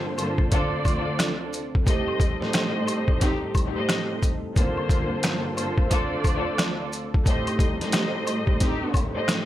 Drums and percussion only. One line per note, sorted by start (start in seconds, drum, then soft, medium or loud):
0.18 closed hi-hat medium
0.18 high woodblock medium
0.18 maracas soft
0.38 kick loud
0.52 kick loud
0.52 closed hi-hat medium
0.52 maracas medium
0.85 kick medium
0.85 closed hi-hat medium
0.85 high woodblock medium
0.85 maracas soft
1.19 cross-stick medium
1.19 snare loud
1.19 closed hi-hat loud
1.19 maracas medium
1.53 closed hi-hat medium
1.53 maracas medium
1.75 kick loud
1.87 kick loud
1.87 closed hi-hat medium
1.87 maracas medium
2.08 high woodblock medium
2.20 kick loud
2.20 closed hi-hat medium
2.20 maracas medium
2.42 snare soft
2.53 cross-stick loud
2.53 snare loud
2.53 closed hi-hat loud
2.53 maracas medium
2.87 closed hi-hat medium
2.87 high woodblock medium
2.87 maracas soft
3.08 kick loud
3.21 kick loud
3.21 snare soft
3.21 closed hi-hat medium
3.21 maracas medium
3.55 kick medium
3.55 closed hi-hat medium
3.55 high woodblock medium
3.55 maracas soft
3.89 cross-stick medium
3.89 snare loud
3.89 closed hi-hat loud
3.89 maracas medium
4.23 kick medium
4.23 closed hi-hat medium
4.23 maracas medium
4.56 kick loud
4.56 closed hi-hat medium
4.56 maracas medium
4.77 high woodblock medium
4.89 kick loud
4.89 closed hi-hat medium
4.89 maracas medium
5.23 cross-stick loud
5.23 snare loud
5.23 closed hi-hat loud
5.23 maracas medium
5.57 closed hi-hat medium
5.57 high woodblock medium
5.57 maracas soft
5.78 kick loud
5.91 kick medium
5.91 closed hi-hat medium
5.91 maracas medium
6.24 kick medium
6.24 closed hi-hat medium
6.24 high woodblock medium
6.24 maracas soft
6.58 cross-stick medium
6.58 snare loud
6.58 closed hi-hat loud
6.58 maracas medium
6.92 closed hi-hat medium
6.92 maracas medium
7.14 kick loud
7.26 kick loud
7.26 closed hi-hat medium
7.26 maracas medium
7.47 closed hi-hat medium
7.47 high woodblock medium
7.59 kick loud
7.59 closed hi-hat medium
7.59 maracas medium
7.81 snare soft
7.81 closed hi-hat medium
7.92 cross-stick loud
7.92 snare loud
7.92 closed hi-hat loud
7.92 maracas medium
8.27 closed hi-hat medium
8.27 high woodblock medium
8.27 maracas soft
8.47 kick loud
8.60 kick medium
8.60 snare soft
8.60 closed hi-hat medium
8.60 maracas medium
8.94 kick medium
8.94 closed hi-hat medium
8.94 high woodblock medium
8.94 maracas soft
9.28 cross-stick medium
9.28 snare loud
9.28 closed hi-hat loud
9.28 maracas medium